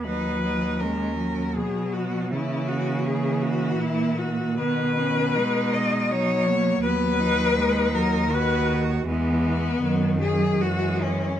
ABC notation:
X:1
M:3/4
L:1/8
Q:1/4=80
K:B
V:1 name="Cello"
B2 A2 G F | E F G F E F | B3 d c2 | B3 A B z |
B,3 G F C |]
V:2 name="Cello"
D D C2 B,2 | A,6 | B, C D2 D A, | B, D D2 F2 |
G,2 F,2 G,2 |]
V:3 name="Cello" clef=bass
F,2 G, F,3 | E,6 | D,2 G,2 F,2 | F,2 G, F, D,2 |
E,2 D,2 E,2 |]
V:4 name="Cello" clef=bass
D,,4 B,,2 | C,4 A,,2 | B,,6 | D,,6 |
E,,2 F,,2 F,,2 |]